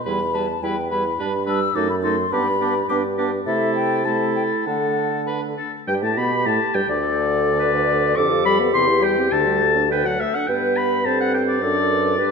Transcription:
0.06 E2 G3 E4 B4 B5
0.34 G3 E4 B4 A5
0.63 E2 G3 E4 B4 G5
0.91 G3 E4 B4 B5
1.19 G2 G3 D4 B4
1.46 G3 D4 B4 E6
1.75 F#2 A3 D#4 A4 D6
1.90 B5
2.03 A3 D#4 A4 C6
2.32 G2 B3 D4 G4 B5
2.61 B3 D4 G4
2.89 G2 B3 D4 G4 D6
3.17 B3 D4 G4
3.46 C3 A3 E4 A4 E5
3.75 G5
4.05 A3 E4 A4 A5
4.36 G5
4.66 D3 A3 D4 A4 F#5
5.27 B4
5.58 A4
5.87 G2 G3 G4 G5
6.02 A2 A3 A5
6.17 B2 B3 B5
6.46 A2 A3 A5
6.74 G2 G3 G5
6.88 D2 D3 D5
7.02 A4
7.59 B4
8.16 F2 D3 G4 A4 D6
8.31 F3
8.45 G3 B5
8.60 B3
8.73 E2 C3 G4 C6
8.89 E3
9.03 G3 G5
9.17 C4
9.32 D2 D3 A4 A5
9.47 G3
9.62 A3
9.76 D4
9.91 D3 F#4 B4 G5
10.06 F#3 F#5
10.20 A3 A4 E5
10.34 D4 F#5
10.47 G2 B3 B4 G5
10.77 B5
11.05 G2 C4 A4 C5 A5
11.20 F#5
11.34 G5
11.48 D5
11.62 F#2 D4 A4
11.91 B4
12.18 G2 D4 B4

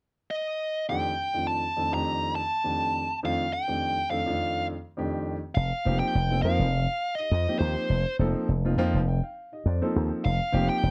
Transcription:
0.31 D#5
0.89 F2 D#3 A3 C4 D4 G4 G5
1.19 D4 G4
1.34 F2 D#3 A3 C4 D4 F4
1.47 A5
1.77 F2 D#3 A3 C4 D4 A4
1.92 F2 D#3 A3 C4 D4 G4 A#5
2.35 A5
2.64 F2 D#3 A3 C4 D4 G4
3.23 F2 D#3 A3 C4 D4 F4 F5
3.51 D4 A4 G5
3.68 F2 D#3 A3 C4 D4 G4
4.10 F2 D#3 A3 C4 D4 A4 F5
4.26 F2 D#3 A3 C4 D4 F4
4.97 F2 D#3 A3 C4 D4 G4
5.55 F1 F5
5.85 F1 F3 A#3 C4 D#4 G4
5.99 G5
6.15 F1
6.30 F3 A#3 C4 D#4 A4
6.42 F2 F3 A#3 C4 D#4 A#4 F5
6.59 F1
6.73 D#4 G4
7.15 D#4 D#5
7.20 G4
7.31 F2
7.48 F3 A#3 C4 D#4 G4
7.59 D#2 C5
7.90 F1
8.19 F1 F3 A#3 C4 D#4 A4
8.48 F1
8.65 F3 A#3 C4 D#4 F4
8.77 F2 F3 A#3 C4 D#4 F4 G5
8.94 F1 F5
9.07 D#4 F4 G5
9.24 F5
9.52 D#4 G4 D#5
9.66 F2 D5
9.82 F3 A#3 C4 D#4 A4 C5
9.96 D#2
10.25 F1 F5
10.52 F1 F3 A#3 C4 D#4 G4
10.69 G5
10.83 F1

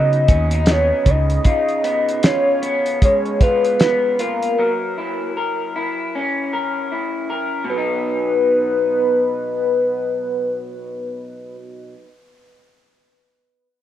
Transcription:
Already playing: C#3 F#3 B3 D#4 D#5
0.13 closed hi-hat
0.28 D#2 C#4, kick, closed hi-hat
0.51 D#4, closed hi-hat
0.66 B3, snare, closed hi-hat
0.71 C#5
1.06 C#2 C#3, kick, closed hi-hat
1.10 D#5
1.30 closed hi-hat
1.44 C#3 F4, kick, closed hi-hat
1.69 closed hi-hat
1.84 B3, closed hi-hat
2.09 closed hi-hat
2.23 F4 C#5, snare, closed hi-hat
2.62 B3, closed hi-hat
2.86 closed hi-hat
3.02 G#3 C#5, kick, closed hi-hat
3.25 closed hi-hat
3.41 F4 B4, kick, closed hi-hat
3.65 closed hi-hat
3.80 B3, snare, closed hi-hat
4.19 F4 A#4, closed hi-hat
4.43 closed hi-hat
4.59 F#3 A#4
4.98 E4
5.37 A#4
5.76 E4
6.15 C#4
6.53 A#4
6.92 E4
7.30 A#4
7.65 B2
7.69 F#3 B4
7.78 D#4

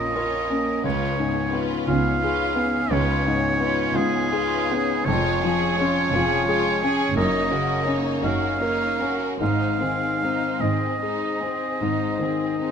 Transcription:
Already playing: A#1 F2 A#2 A#3 C#4 F4 A#4 D#5
0.14 C#4 F4 A#4 C#5
0.49 A#3 C#4 A#4
0.83 C#2 C#3 C#4 F4 B4 C#5
1.17 G#2 B3 C#4 G#4
1.52 B3 C#4 F4 B4
1.87 C#2 C#3 B3 C#4 F4 G#4 F5
2.21 C#4 F4 G#4 B4
2.54 B3 C#4 G#4
2.89 C#2 C#3 C#4 F4 B4 C#5
3.23 G#2 B3 C#4 G#4
3.59 B3 C#4 F4 B4
3.94 C#2 C#3 B3 C#4 F4 G#4
4.30 C#4 F4 G#4 B4
4.68 B3 G#4
4.72 C#4
5.05 F1 F2 G#3 F4 C#5
5.10 C#5
5.42 F3 C#4 G#4
5.47 G#4
5.77 G#3 C#4 F4 C#5
6.11 F1 C#4 G#4
6.15 F2 F4 G#4
6.45 G#3 F4 G#4
6.50 C#5
6.81 C#4 G#4
7.15 F#1 F#2 A#3 D#4 C#5 D#5
7.49 C#3 C#4 F#4 A#4
7.84 A#3 C#4 D#4 C#5
8.22 F#1 F#2 C#4 D#4 F#4 A#4 F5
8.60 A#3 D#4 A#4 C#5
8.99 C#4 F#4 A#4
9.39 G#1 G#2 G#3 D#4 C5 F5
9.79 D#3 C4 G#4
10.19 G#3 C4 D#4 C5
10.60 G#1 G#2 C4 D#4 G#4 D#5
11.00 G#3 D#4 G#4 C5
11.41 C4 G#4
11.80 G#1 G#2 G#3 D#4 C5
12.17 D#3 C4 G#4
12.21 C4
12.58 G#3 C4 D#4 C5

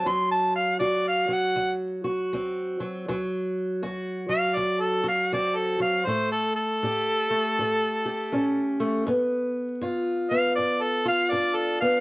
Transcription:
Already playing: F#4
0.06 D2 F#3 C6
0.32 A5
0.55 F5
0.79 D2 F#4 D5
1.08 F5
1.29 F#3
1.33 F#5
1.56 D2
2.04 F#4
2.33 D2 C4
2.80 F#3
3.08 D2 F#3
3.83 D2 F#4
4.29 F#3 F5
4.55 D2 D5
4.81 A4
5.04 F#4
5.08 F5
5.32 D2 C4 D5
5.56 A4
5.80 F#3 F5
6.05 A2 A3 C5
6.32 A4
6.56 A4
6.83 A2 G4
7.30 A3
7.59 A2
8.05 G4
8.32 A2 C#4
8.80 A3
9.07 G2 B3
9.81 G2 F4
10.31 B3 F5
10.56 G2 D5
10.81 A4
11.05 F4 F5
11.31 G2 D4 D5
11.55 A4
11.81 B3 F5

